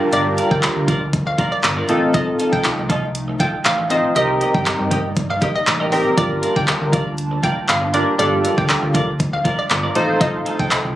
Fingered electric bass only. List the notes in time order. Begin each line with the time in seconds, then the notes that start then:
0.13 G1
0.51 D2
0.76 D2
1.64 G1
1.89 A1
2.53 C2
2.78 C2
3.65 A1
4.16 C2
4.54 G2
4.80 G2
5.67 A1
6.18 G1
6.56 D2
6.81 D2
7.69 G1
8.19 G1
8.58 D2
8.83 D2
9.70 G1
9.96 A1
10.59 C2
10.85 C2